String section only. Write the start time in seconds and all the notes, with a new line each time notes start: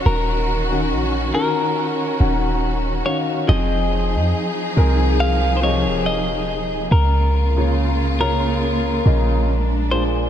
Already playing: D#3 F#4
0.05 C#4
3.48 F3 D#4 G#4
6.91 C#3 A#3 F4
9.48 G#3 D4